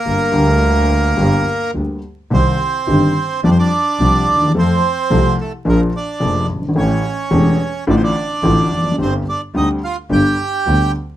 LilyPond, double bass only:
\new Staff \with { instrumentName = "Double bass" } { \clef bass \time 4/4 \key g \minor \tempo 4 = 107 g,,8 d,4. g,,8 r8 d,8 r8 | \key f \dorian c,8 r8 g,,8 r8 f,8 r8 c,8 ees,8 | f,8 r8 c,8 r8 bes,,8 r8 f,,8 g,,8 | a,,8 r8 e,,8 r8 a,,8 r8 a,,8 f,,8 |
g,,8 r8 d,8 r8 g,,8 r8 d,8 r8 | }